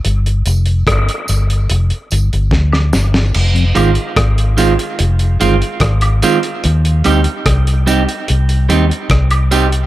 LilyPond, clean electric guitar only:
\new Staff \with { instrumentName = "Clean electric guitar" } { \time 4/4 \key f \dorian \tempo 4 = 73 r1 | r8 <ees aes c' f'>8 r8 <ees aes c' f'>8 r8 <ees aes c' f'>8 r8 <ees aes c' f'>8 | r8 <g c' ees' g'>8 r8 <g c' ees' g'>8 r8 <g c' ees' g'>8 r8 <g c' ees' g'>8 | }